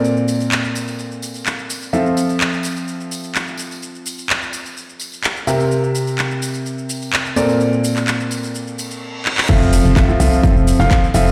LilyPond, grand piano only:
\new Staff \with { instrumentName = "Grand piano" } { \time 4/4 \key f \major \tempo 4 = 127 <bes, c' a' bes' d''>1 | <f c' f' a' e''>1~ | <f c' f' a' e''>2.~ <f c' f' a' e''>8 <c c' g' bes' e''>8~ | <c c' g' bes' e''>2.~ <c c' g' bes' e''>8 <bes, c' a' bes' d''>8~ |
<bes, c' a' bes' d''>1 | <f c' f' a' e''>4 <f c' f' a' e''>16 <f c' f' a' e''>16 <f c' f' a' e''>8 <f f' a' e''>8. <f c' f' a' f''>8 r16 <f c' f' a' e''>8 | }